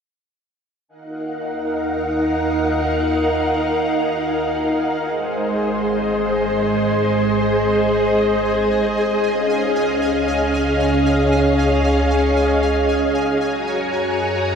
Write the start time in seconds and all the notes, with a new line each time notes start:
0.88 D#2 D#4 A#4 F5 F#5 G#5
5.06 G#1 G#3 G#4 C5 D#5
9.23 C#2 C#4 F5
13.41 F#2 F#4 C#5 G#5 A#5